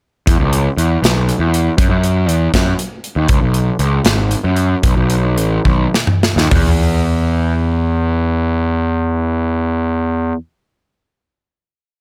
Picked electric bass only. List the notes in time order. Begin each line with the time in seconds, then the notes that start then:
0.27 E2
0.39 C#2
0.77 E2
1.02 B1
1.39 E2
1.78 F#2
1.90 F#2
2.28 E2
2.54 F#2
3.16 D#2
3.29 C#2
3.41 B1
3.79 C#2
4.05 G#1
4.44 F#2
4.83 B1
4.96 B1
5.38 A1
5.65 B1
6.36 D#2
6.51 E2